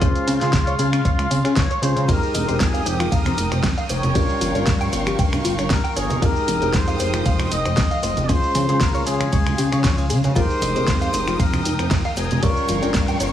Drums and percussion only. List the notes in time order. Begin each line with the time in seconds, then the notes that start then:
0.02 kick, closed hi-hat, shaker
0.16 closed hi-hat, shaker
0.28 open hi-hat, shaker
0.41 snare, closed hi-hat, shaker
0.53 kick, snare, closed hi-hat, shaker
0.67 closed hi-hat, shaker
0.79 open hi-hat, shaker
0.93 finger snap, closed hi-hat, shaker
1.05 kick, closed hi-hat, shaker
1.19 finger snap, closed hi-hat, shaker
1.31 open hi-hat, shaker
1.45 finger snap, closed hi-hat, shaker
1.56 kick, snare, closed hi-hat, shaker
1.71 closed hi-hat, shaker
1.83 open hi-hat, shaker
1.97 closed hi-hat, shaker
2.08 kick, closed hi-hat, ride, cabasa, shaker
2.23 shaker
2.35 open hi-hat, high conga, cabasa, shaker
2.48 closed hi-hat, cabasa, shaker
2.60 kick, snare, closed hi-hat, ride, cabasa, shaker
2.74 closed hi-hat, muted conga, cabasa, shaker
2.86 open hi-hat, cabasa, shaker
3.00 finger snap, closed hi-hat, muted conga, high conga, cabasa, shaker
3.12 kick, closed hi-hat, ride, cabasa, shaker
3.26 finger snap, closed hi-hat, low conga, cabasa, shaker
3.38 open hi-hat, cabasa, shaker
3.52 finger snap, closed hi-hat, cabasa, shaker
3.63 kick, snare, closed hi-hat, ride, high conga, cabasa, shaker
3.78 closed hi-hat, shaker
3.89 open hi-hat, cabasa, shaker
4.03 closed hi-hat, low conga, cabasa, shaker
4.15 kick, closed hi-hat, ride, cabasa, shaker
4.29 shaker
4.41 open hi-hat, high conga, cabasa, shaker
4.55 closed hi-hat, cabasa, shaker
4.66 kick, snare, closed hi-hat, ride, cabasa, shaker
4.81 closed hi-hat, muted conga, cabasa, shaker
4.93 open hi-hat, cabasa, shaker
5.07 finger snap, closed hi-hat, muted conga, high conga, cabasa, shaker
5.19 kick, closed hi-hat, ride, cabasa, shaker
5.33 finger snap, closed hi-hat, low conga, cabasa, shaker
5.45 open hi-hat, cabasa, shaker
5.58 finger snap, closed hi-hat, cabasa, shaker
5.70 kick, snare, closed hi-hat, ride, high conga, cabasa, shaker
5.85 closed hi-hat, shaker
5.97 open hi-hat, cabasa, shaker
6.09 closed hi-hat, low conga, cabasa, shaker
6.22 kick, closed hi-hat, ride, cabasa, shaker
6.36 shaker
6.48 open hi-hat, high conga, cabasa, shaker
6.62 closed hi-hat, cabasa, shaker
6.73 kick, snare, closed hi-hat, ride, cabasa, shaker
6.88 closed hi-hat, muted conga, cabasa, shaker
7.00 open hi-hat, cabasa, shaker
7.13 finger snap, closed hi-hat, muted conga, high conga, cabasa, shaker
7.25 kick, closed hi-hat, ride, cabasa, shaker
7.39 finger snap, closed hi-hat, low conga, cabasa, shaker
7.52 open hi-hat, cabasa, shaker
7.66 finger snap, closed hi-hat, cabasa, shaker
7.77 kick, snare, closed hi-hat, ride, high conga, cabasa, shaker
7.91 closed hi-hat, shaker
8.03 open hi-hat, cabasa, shaker
8.17 closed hi-hat, low conga, cabasa, shaker
8.29 kick, closed hi-hat, ride, cabasa, shaker
8.43 shaker
8.55 open hi-hat, high conga, cabasa, shaker
8.68 closed hi-hat, cabasa, shaker
8.80 kick, snare, closed hi-hat, ride, cabasa, shaker
8.95 closed hi-hat, muted conga, cabasa, shaker
9.07 open hi-hat, cabasa, shaker
9.20 finger snap, closed hi-hat, muted conga, high conga, cabasa, shaker
9.32 kick, closed hi-hat, ride, cabasa, shaker
9.47 finger snap, closed hi-hat, low conga, cabasa, shaker
9.58 open hi-hat, cabasa, shaker
9.72 finger snap, closed hi-hat, cabasa, shaker
9.84 kick, snare, closed hi-hat, ride, high conga, cabasa, shaker
9.98 closed hi-hat, cabasa, shaker
10.10 open hi-hat, cabasa, shaker
10.24 closed hi-hat, low conga, cabasa, shaker
10.35 kick, closed hi-hat, ride, cabasa, shaker
10.50 shaker
10.61 open hi-hat, high conga, cabasa, shaker
10.75 closed hi-hat, cabasa, shaker
10.87 kick, snare, closed hi-hat, ride, cabasa, shaker
11.01 closed hi-hat, muted conga, cabasa, shaker
11.13 open hi-hat, cabasa, shaker
11.27 finger snap, closed hi-hat, muted conga, high conga, cabasa, shaker
11.39 kick, closed hi-hat, ride, cabasa, shaker
11.53 finger snap, closed hi-hat, low conga, cabasa, shaker
11.65 open hi-hat, cabasa, shaker
11.79 finger snap, closed hi-hat, cabasa, shaker
11.91 kick, snare, closed hi-hat, ride, high conga, cabasa, shaker
12.05 closed hi-hat, shaker
12.17 open hi-hat, cabasa, shaker
12.31 closed hi-hat, low conga, cabasa, shaker
12.43 kick, closed hi-hat, ride, cabasa, shaker
12.57 shaker
12.68 open hi-hat, high conga, cabasa, shaker
12.83 closed hi-hat, cabasa, shaker
12.94 kick, snare, closed hi-hat, ride, cabasa, shaker
13.08 closed hi-hat, muted conga, cabasa, shaker
13.20 open hi-hat, cabasa, shaker